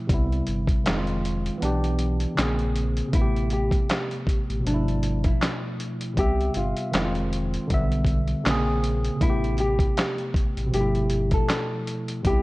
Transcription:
0.00 0.12 B2 medium
0.00 0.11 F3 medium
0.00 0.11 A3 medium
0.00 0.11 E4 medium
0.07 0.42 C2 loud
0.07 0.84 C3 medium
0.07 0.86 G3 medium
0.07 kick loud
0.07 closed hi-hat medium
0.12 0.87 B3 medium
0.12 0.88 E4 medium
0.33 closed hi-hat soft
0.47 0.66 G1 medium
0.47 closed hi-hat medium
0.67 kick loud
0.67 closed hi-hat medium
0.84 1.50 F1 loud
0.84 1.61 D#3 medium
0.84 1.62 G#3 medium
0.84 snare loud
0.84 clap medium
0.84 closed hi-hat medium
0.89 1.63 C4 medium
0.89 0.96 D#4 medium
0.98 1.68 F4 medium
1.07 closed hi-hat soft
1.25 closed hi-hat medium
1.46 closed hi-hat soft
1.58 2.36 E3 medium
1.58 2.37 B3 medium
1.62 2.26 B1 loud
1.62 2.38 D4 medium
1.62 2.39 G4 medium
1.62 closed hi-hat medium
1.84 closed hi-hat soft
1.99 closed hi-hat medium
2.20 closed hi-hat soft
2.35 3.02 A#1 loud
2.35 3.12 C#3 medium
2.35 3.13 A#3 medium
2.35 snare loud
2.35 clap medium
2.39 3.14 C4 medium
2.39 3.16 G#4 medium
2.39 closed hi-hat medium
2.59 closed hi-hat soft
2.76 closed hi-hat medium
2.97 closed hi-hat medium
3.08 4.59 C3 medium
3.12 3.78 A1 loud
3.12 4.62 A3 medium
3.12 3.48 E4 loud
3.12 kick loud
3.12 closed hi-hat medium
3.17 4.64 B3 medium
3.21 4.66 G4 medium
3.36 closed hi-hat soft
3.50 4.62 G4 medium
3.50 closed hi-hat medium
3.71 kick medium
3.71 closed hi-hat medium
3.90 snare medium
3.90 clap medium
3.90 closed hi-hat medium
4.11 closed hi-hat soft
4.27 kick medium
4.27 closed hi-hat medium
4.49 4.63 A1 medium
4.49 closed hi-hat soft
4.60 6.12 B2 medium
4.65 5.30 G1 loud
4.65 6.14 F3 medium
4.65 5.22 D4 medium
4.65 closed hi-hat medium
4.69 6.16 A3 medium
4.74 6.19 E4 medium
4.88 closed hi-hat soft
5.03 closed hi-hat medium
5.24 6.14 E4 medium
5.24 kick medium
5.24 closed hi-hat soft
5.42 snare loud
5.42 clap medium
5.42 closed hi-hat medium
5.80 closed hi-hat medium
6.01 closed hi-hat medium
6.14 6.50 C2 loud
6.14 6.92 C3 medium
6.14 6.93 G3 medium
6.14 kick loud
6.14 closed hi-hat medium
6.18 6.94 B3 medium
6.18 6.52 G4 loud
6.18 6.95 E5 medium
6.41 closed hi-hat soft
6.54 6.74 G1 medium
6.54 9.18 F4 medium
6.54 closed hi-hat medium
6.77 closed hi-hat medium
6.91 7.58 F1 loud
6.91 7.68 D#3 medium
6.91 7.70 G#3 medium
6.91 snare loud
6.91 clap medium
6.91 closed hi-hat medium
6.96 7.71 C4 medium
6.96 7.03 E4 medium
7.05 7.75 F4 medium
7.15 closed hi-hat soft
7.33 closed hi-hat medium
7.54 closed hi-hat soft
7.67 8.34 B1 loud
7.67 8.44 D3 medium
7.67 8.45 G3 medium
7.67 kick medium
7.67 closed hi-hat medium
7.72 8.46 B3 medium
7.72 8.48 E5 medium
7.92 closed hi-hat soft
8.04 kick medium
8.04 closed hi-hat medium
8.27 closed hi-hat soft
8.44 9.10 A#1 loud
8.44 9.20 C#3 medium
8.44 9.21 A#3 medium
8.44 snare loud
8.44 clap medium
8.44 closed hi-hat medium
8.48 9.23 C4 medium
8.48 9.24 G#4 medium
8.84 closed hi-hat medium
9.04 closed hi-hat medium
9.16 10.67 C3 medium
9.20 9.86 A1 loud
9.20 10.69 A3 medium
9.20 9.56 E4 loud
9.20 kick loud
9.20 closed hi-hat medium
9.25 10.72 B3 medium
9.29 10.74 G4 medium
9.44 closed hi-hat soft
9.58 10.70 G4 medium
9.58 closed hi-hat medium
9.79 kick medium
9.79 closed hi-hat medium
9.97 snare loud
9.97 clap medium
9.97 closed hi-hat medium
10.18 closed hi-hat soft
10.34 kick loud
10.34 closed hi-hat medium
10.57 10.71 A1 medium
10.57 closed hi-hat soft
10.67 12.19 B2 medium
10.71 11.38 G1 loud
10.71 12.21 F3 medium
10.71 11.29 G4 medium
10.71 closed hi-hat medium
10.76 12.23 A3 medium
10.80 12.26 E4 medium
10.95 closed hi-hat soft
11.10 closed hi-hat medium
11.31 12.22 A4 medium
11.31 kick medium
11.31 closed hi-hat soft
11.50 snare loud
11.50 clap medium
11.50 closed hi-hat medium
11.87 closed hi-hat medium
12.08 closed hi-hat medium
12.22 12.43 C2 loud
12.22 12.43 C3 medium
12.22 12.43 G3 medium
12.22 kick loud
12.22 closed hi-hat medium
12.27 12.43 B3 medium
12.27 12.43 E4 medium
12.27 12.43 G4 loud

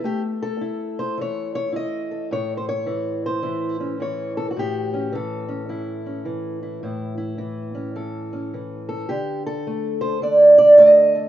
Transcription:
0.04 2.86 A3 medium
0.04 0.21 G4 loud
0.42 1.55 A4 medium
0.61 1.72 E4 medium
0.99 1.19 C5 loud
1.17 2.86 E3 medium
1.17 1.54 C#5 loud
1.55 1.75 C#5 loud
1.72 3.43 E4 medium
1.72 2.32 D#5 loud
2.11 3.42 A4 soft
2.31 4.56 A2 medium
2.31 2.57 C#5 loud
2.57 2.66 C5 medium
2.69 3.24 C#5 loud
2.86 3.43 E3 medium
3.26 4.01 C5 medium
3.43 4.00 E3 medium
3.43 4.54 E4 medium
3.80 4.62 C#4 soft
4.00 5.12 E3 medium
4.00 4.37 C#5 medium
4.37 4.50 A4 medium
4.51 5.13 F#4 medium
4.56 6.80 A2 medium
4.56 5.14 G4 loud
4.94 5.48 C#4 soft
5.12 5.68 E3 medium
5.12 7.95 A4 medium
5.48 6.05 C#4 soft
5.69 6.24 E3 medium
5.69 6.61 E4 soft
6.06 6.80 C#4 soft
6.25 7.37 E3 medium
6.63 6.80 E4 soft
6.83 9.06 A2 medium
6.83 7.16 E4 soft
7.18 9.06 E4 medium
7.38 7.94 E3 medium
7.75 8.31 C#4 soft
7.96 8.52 E3 medium
7.96 8.88 A4 soft
8.33 9.07 C#4 soft
8.54 9.09 E3 medium
8.89 9.09 A4 medium
9.09 10.21 D3 medium
9.09 9.45 G4 loud
9.46 10.59 A4 medium
9.67 10.78 A3 medium
10.01 10.22 C5 medium
10.22 11.29 D3 medium
10.22 10.57 D5 medium
10.58 10.77 D5 loud
10.78 11.29 A3 medium
10.78 11.29 D#5 loud
11.15 11.29 A4 soft

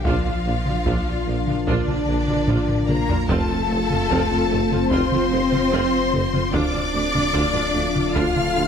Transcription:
0.04 3.30 A#1 medium
0.04 0.14 A#1 medium
0.04 6.50 F3 medium
0.04 1.64 F3 medium
0.04 3.25 D4 medium
0.04 3.13 D4 medium
0.04 0.25 D4 medium
0.04 6.49 F4 medium
0.04 1.67 F4 medium
0.04 6.50 F4 medium
0.04 0.25 F4 medium
0.04 3.25 A#4 medium
0.04 1.67 F5 loud
0.04 taiko medium
0.25 0.33 A#1 medium
0.25 0.34 D4 medium
0.25 0.34 F4 medium
0.46 0.54 A#1 medium
0.46 0.54 A#3 medium
0.46 0.54 D4 medium
0.66 0.75 A#1 medium
0.66 0.75 D4 medium
0.66 0.75 F4 medium
0.66 taiko mid soft
0.86 0.94 A#1 loud
0.86 0.95 A#1 medium
0.86 1.06 D4 medium
0.86 1.06 F4 medium
0.86 taiko medium
1.07 1.15 A#1 medium
1.07 1.16 D4 medium
1.07 1.16 F4 medium
1.27 1.35 A#1 medium
1.27 1.36 A#1 medium
1.27 1.36 A#3 medium
1.27 1.36 D4 medium
1.47 1.56 A#1 medium
1.47 1.55 D4 medium
1.47 1.56 F4 medium
1.47 taiko mid medium
1.67 1.76 A#1 medium
1.67 2.86 D3 medium
1.67 1.86 D4 medium
1.67 2.87 D4 loud
1.67 1.86 F4 medium
1.67 2.89 D5 loud
1.67 taiko medium
1.88 1.96 A#1 medium
1.88 1.96 D4 medium
1.88 1.96 F4 medium
1.88 taiko mid medium
2.08 2.16 A#1 medium
2.08 2.17 A#1 medium
2.08 2.16 A#3 medium
2.08 2.16 D4 medium
2.28 2.36 A#1 medium
2.28 2.36 D4 medium
2.28 2.37 F4 medium
2.28 taiko mid medium
2.48 2.56 A#1 medium
2.48 2.57 A#1 medium
2.48 2.67 D4 medium
2.48 2.67 F4 medium
2.48 taiko low-mid medium
2.69 taiko low-mid loud
2.88 2.97 A#1 medium
2.88 2.96 A#3 medium
2.88 3.28 A#3 loud
2.88 2.96 D4 medium
2.88 3.29 A#4 loud
2.88 3.29 A#5 loud
2.88 taiko mid medium
3.08 3.17 A#1 medium
3.08 3.16 D4 medium
3.08 3.16 F4 medium
3.08 taiko low loud
3.29 6.55 F1 medium
3.29 3.38 F1 loud
3.29 3.37 F2 medium
3.29 4.88 A3 loud
3.29 3.48 C4 medium
3.29 6.50 C4 loud
3.29 6.54 C4 medium
3.29 3.48 F4 medium
3.29 4.91 A4 loud
3.29 6.54 C5 medium
3.29 4.88 A5 loud
3.29 taiko loud
3.49 3.58 F2 medium
3.49 3.57 C4 medium
3.49 3.57 F4 medium
3.69 3.79 F1 medium
3.69 3.78 F2 medium
3.69 3.77 A3 medium
3.69 3.77 C4 medium
3.90 3.99 F2 medium
3.90 3.98 C4 medium
3.90 3.98 F4 medium
3.90 taiko mid medium
4.10 4.19 F1 loud
4.10 4.18 F2 loud
4.10 4.29 C4 medium
4.10 4.29 F4 medium
4.10 taiko medium
4.30 4.39 F2 medium
4.30 4.38 C4 medium
4.30 4.39 F4 medium
4.51 4.59 F1 medium
4.51 4.60 F2 medium
4.51 4.59 A3 medium
4.51 4.59 C4 medium
4.71 4.80 F2 medium
4.71 4.79 C4 medium
4.71 4.79 F4 medium
4.71 taiko mid medium
4.91 5.00 F1 loud
4.91 5.00 F2 loud
4.91 6.54 C4 loud
4.91 5.10 C4 medium
4.91 5.11 F4 medium
4.91 6.51 C5 loud
4.91 6.50 C6 loud
4.91 taiko medium
5.12 5.20 F2 medium
5.12 5.20 C4 medium
5.12 5.20 F4 medium
5.12 taiko mid medium
5.31 5.40 F1 medium
5.31 5.41 F2 medium
5.31 5.39 A3 medium
5.31 5.40 C4 medium
5.51 5.61 F2 medium
5.51 5.60 C4 medium
5.51 5.59 F4 medium
5.51 taiko mid medium
5.72 5.80 F1 loud
5.72 5.81 F2 loud
5.72 5.91 C4 medium
5.72 5.91 F4 medium
6.13 6.21 F1 medium
6.13 6.21 F2 medium
6.13 6.21 A3 medium
6.13 6.21 C4 medium
6.13 taiko mid medium
6.32 6.41 F2 medium
6.32 6.40 C4 medium
6.32 6.40 F4 medium
6.32 taiko mid medium
6.52 8.68 D1 medium
6.52 6.61 D2 loud
6.52 8.68 F3 medium
6.52 8.68 A3 loud
6.52 6.72 D4 loud
6.52 8.12 D4 loud
6.52 8.68 D4 medium
6.52 6.72 F4 loud
6.52 8.68 F4 loud
6.52 8.68 F4 medium
6.52 8.68 A4 medium
6.52 8.15 D5 loud
6.52 8.16 D6 loud
6.52 taiko loud
6.73 6.81 D2 medium
6.73 6.81 D4 medium
6.73 6.81 F4 medium
6.93 7.02 D2 medium
6.93 7.02 A3 medium
6.93 7.01 D4 medium
7.13 7.22 D2 medium
7.13 7.21 D4 medium
7.13 7.21 F4 medium
7.13 taiko mid medium
7.33 7.42 D2 loud
7.33 7.53 D4 loud
7.33 7.53 F4 loud
7.33 taiko medium
7.53 7.61 D2 medium
7.53 7.62 D4 medium
7.53 7.62 F4 medium
7.74 7.82 D2 medium
7.74 7.83 D2 medium
7.74 7.82 A3 medium
7.74 7.82 D4 medium
7.94 8.03 D2 medium
7.94 8.02 D4 medium
7.94 8.02 F4 medium
7.94 taiko mid medium
8.14 8.23 D2 loud
8.14 8.24 D2 loud
8.14 8.33 D4 medium
8.14 8.33 F4 loud
8.14 8.68 F4 loud
8.14 8.68 F5 loud
8.14 8.68 F6 loud
8.14 taiko medium
8.34 8.44 D2 medium
8.34 8.42 D4 medium
8.34 8.43 F4 medium
8.34 taiko mid medium
8.55 8.64 D2 medium
8.55 8.63 A3 medium
8.55 8.63 D4 medium

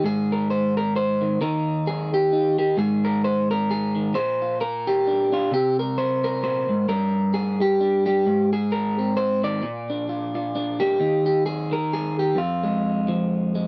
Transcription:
0.00 1.20 D#3 medium
0.04 1.39 G#2 medium
0.04 0.77 G#4 medium
0.32 0.50 A#4 medium
0.50 0.76 C5 medium
0.77 0.96 A#4 medium
0.96 1.41 C5 medium
1.21 1.40 D#3 medium
1.41 2.77 D#2 medium
1.41 2.57 D#3 medium
1.41 2.32 D#4 soft
1.41 2.32 A#4 medium
1.87 2.13 G#4 medium
2.14 2.57 G4 medium
2.33 2.76 D#4 soft
2.58 3.94 D#3 medium
2.58 2.78 G4 medium
2.78 4.12 G#2 medium
2.78 3.50 G#4 medium
3.05 3.24 A#4 medium
3.24 3.50 C5 medium
3.51 4.15 A#4 medium
3.71 4.16 G#4 medium
3.95 4.15 D#3 medium
4.14 5.52 A#2 medium
4.14 4.61 C5 loud
4.42 4.87 F4 soft
4.61 5.33 A#4 medium
4.87 5.52 G4 medium
5.07 5.31 D4 soft
5.32 5.49 D4 medium
5.32 5.52 F4 medium
5.51 6.69 C3 medium
5.51 5.79 G4 loud
5.79 6.23 A#4 medium
5.98 6.42 C5 medium
6.24 6.87 A#4 medium
6.43 6.69 A#2 medium
6.43 6.88 C5 medium
6.69 6.88 G#2 medium
6.89 8.23 G2 medium
6.89 7.80 A#4 medium
7.34 7.60 G#4 loud
7.61 8.05 G4 loud
7.81 8.24 D4 soft
8.06 8.24 G3 medium
8.06 8.52 G4 medium
8.26 9.61 G#2 medium
8.53 8.98 G#4 medium
8.72 9.16 A#4 loud
8.99 9.63 C4 soft
9.17 9.43 C5 loud
9.44 9.63 D#3 medium
9.44 11.00 D5 loud
9.63 11.00 A#2 medium
9.90 10.54 D4 medium
10.09 10.34 F4 soft
10.35 10.79 F4 soft
10.55 10.98 D4 medium
10.80 10.97 A#3 medium
10.80 11.25 G4 loud
11.00 12.35 D#2 medium
11.00 12.35 D#4 soft
11.26 11.45 G4 medium
11.46 11.72 G#4 medium
11.71 12.37 D#3 medium
11.71 12.37 A#4 loud
11.93 12.18 G#4 loud
12.19 12.38 G4 medium
12.36 13.67 F2 medium
12.36 13.67 F4 medium
12.63 13.54 G#3 soft
13.08 13.67 F3 medium
13.55 13.67 G#3 soft

